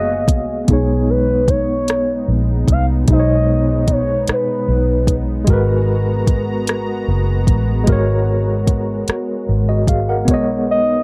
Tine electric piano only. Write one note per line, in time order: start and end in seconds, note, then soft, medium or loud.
0.00 0.70 A#3 medium
0.00 0.65 B3 medium
0.00 0.70 F#4 medium
0.00 0.71 D#5 loud
0.00 0.70 F5 loud
0.65 3.04 G#3 medium
0.65 3.03 B3 medium
0.71 3.05 D#4 soft
0.71 3.07 C#5 medium
3.04 5.42 B2 medium
3.04 5.43 G#3 medium
3.10 5.45 D#4 medium
3.10 3.17 C5 medium
3.20 5.50 C#5 medium
5.44 7.82 G#3 medium
5.44 7.84 F#4 medium
5.50 7.85 A#4 medium
5.50 7.87 B4 medium
7.84 10.22 G#3 medium
7.84 9.44 F#4 medium
7.89 9.46 A#4 medium
7.89 9.47 C#5 medium
9.69 9.88 F#4 medium
9.69 9.88 D#5 medium
9.89 10.08 G#4 medium
9.89 10.07 F5 medium
10.09 10.47 A#4 soft
10.09 10.47 F#5 medium
10.25 11.03 G#3 medium
10.25 11.03 B3 medium
10.31 11.03 C#5 medium
10.31 11.03 D#5 medium